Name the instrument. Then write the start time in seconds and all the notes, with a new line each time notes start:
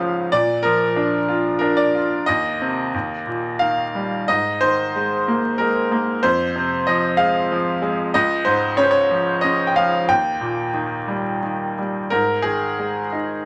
grand piano
Already playing: C#2 G#2 C#3 C#5 D#5 F5
0.00 F3
0.32 A#2 D5
0.63 F3 A#4
0.96 D4
1.28 F4
1.59 D4 A#4
1.77 D5
1.95 F4
2.26 D#2 D#5
2.62 C3
2.94 D#2
3.27 A#2
3.59 D#3 F5
3.95 G3
4.28 G#2 D#5
4.61 D#3 C5
4.96 G#3
5.28 A#3
5.58 G#3 A#4
5.92 A#3
6.23 F2 C5
6.56 C3
6.87 F3 D#5
7.17 G#3 F5
7.52 F3
7.82 G#3
8.14 C#2 D#5
8.45 G#2 C5
8.77 C#3 C#5
8.83 C5
8.91 C#5
9.11 F3
9.41 C#3 D#5
9.67 G5
9.76 F3 F5
10.08 D#2 G5
10.41 A#2
10.74 D#3
11.08 G3
11.43 D#3
11.78 G3
12.10 G#2 A#4
12.42 D#3 G#4
12.79 G#3
13.13 D#4